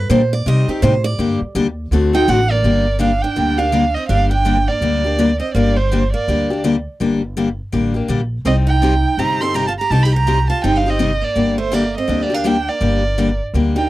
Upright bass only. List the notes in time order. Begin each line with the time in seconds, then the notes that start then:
0.10 A#2
0.46 C3
0.68 muted upright bass stroke
0.83 A2
1.19 G2
1.41 muted upright bass stroke
1.55 D#2
1.91 D2
2.28 A1
2.63 G1
3.37 D2
4.09 G1
4.81 D2
5.55 G1
6.28 D2
7.01 G1
7.73 A1
8.09 A#1
8.45 C2
9.17 G1
9.90 C2
10.64 G1
11.36 G1
12.08 D2
12.81 G1
13.54 D2